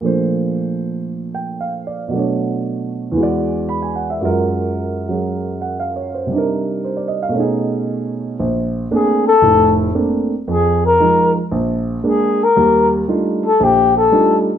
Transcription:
0.01 grand piano A#2 F3 A3 D4
0.06 grand piano C5
1.35 grand piano G5
1.61 grand piano F5
1.87 grand piano D5
2.08 grand piano B2 F#3
2.13 grand piano A3 D4
2.19 grand piano C#5
3.12 grand piano E2 E3
3.17 grand piano G#3 F#4
3.23 grand piano D5
3.69 grand piano B5
3.82 grand piano G#5
3.96 grand piano F#5
4.10 grand piano E5
4.21 grand piano F#2 F#3 G#3 F4
4.25 grand piano A#4
5.08 grand piano F#3 C#4 G#4
5.62 grand piano F#5
5.80 grand piano F5
5.96 grand piano C#5
6.14 grand piano C5
6.27 grand piano C3 G3
6.32 grand piano D4 D#4
6.38 grand piano A#4
6.85 grand piano C5
6.97 grand piano D5
7.08 grand piano D#5
7.23 grand piano F5
7.29 grand piano B2 A3
7.35 grand piano C#4 D#4
7.40 grand piano G#4
8.40 grand piano A#1
8.91 grand piano A3 A#3 C4 D4, flugelhorn G#4
9.27 flugelhorn A4
9.42 grand piano F1 A2
9.95 grand piano A3 A#3 C4 D4
10.48 grand piano F2, flugelhorn G#4
10.86 flugelhorn A#4
11.00 grand piano F3 G#3 D#4
11.52 grand piano A#1
12.04 grand piano G#3 A#3 D4
12.09 flugelhorn G#4
12.44 flugelhorn A#4
12.57 grand piano D#2 G3
13.08 grand piano G3 A3 D4 D#4 F4
13.45 flugelhorn A4
13.60 grand piano A#1, flugelhorn G4
13.97 flugelhorn A4
14.12 grand piano G3 A3 D4 D#4 F4

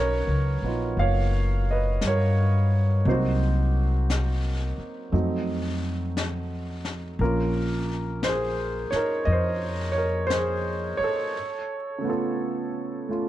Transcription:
Already playing: upright bass B1, grand piano F#3 C#4 D#4 F#4 B4 C#5
0.00 grand piano A#4
0.27 upright bass C#2
0.62 upright bass A#1, grand piano B3 D#4
0.67 grand piano F4
0.97 upright bass F#1, grand piano F5, brush sweep
1.01 grand piano C#5
1.71 grand piano B4 D#5
2.01 upright bass G2, brush sweep, snare, hi-hat pedal
2.07 grand piano A#4 C#5
3.05 upright bass C2, grand piano F#3 A#3 C4 D#4 C5, brush sweep
3.11 grand piano F#4
4.10 brush sweep, snare, hi-hat pedal
4.78 muted upright bass stroke
5.12 upright bass F2, grand piano F#3 A3 C4 D#4, brush sweep
6.17 brush sweep, snare, hi-hat pedal
6.85 snare
7.19 upright bass A#1, grand piano A#3 C#4 F4 A#4, brush sweep
8.23 grand piano C5, brush sweep, snare, hi-hat pedal
8.29 grand piano G#4
8.91 grand piano C#5, muted upright bass stroke, snare
8.95 grand piano D#4 A#4
9.25 upright bass F2, grand piano D#5, brush sweep
9.32 grand piano C5
9.92 grand piano C#5
9.98 grand piano A#4
10.27 grand piano C5, brush sweep, snare, hi-hat pedal
10.34 grand piano G#4
10.97 grand piano C#5, muted upright bass stroke
11.04 grand piano A4
11.98 grand piano C#3 A3
12.04 grand piano B3 F4
12.10 grand piano A4
13.09 grand piano A3 C#4 F4

